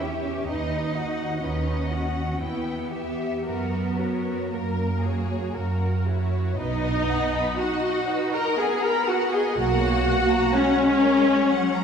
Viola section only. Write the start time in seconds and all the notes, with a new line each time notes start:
0.02 G4
0.49 D#4
0.97 F#4
1.43 D#4
1.91 F#4
2.40 E4
2.91 G4
3.45 A#4
3.99 F#4
4.52 A#4
5.04 F#4
5.55 A#4
6.06 F#4
6.58 D#4
7.60 F#4
8.33 A#4
8.60 G#4
8.84 A#4
9.09 F#4
9.33 G#4
9.58 F#4
10.55 C#4